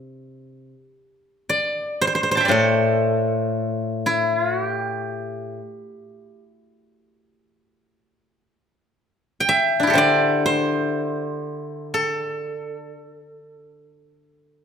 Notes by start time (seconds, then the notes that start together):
Already playing: C3
1.49 D5
2.01 C5
2.07 C5
2.15 C5
2.23 C5
2.31 C5 A5
2.37 C5 E5 G5
2.45 C5 D5
2.49 A2 A4
4.06 E4
4.37 F4
4.52 F#4
4.68 G4
9.40 G5
9.49 E5
9.80 D4 E4
9.87 G4 A4
9.93 D3 C5
9.98 D5
10.46 C5
11.94 A4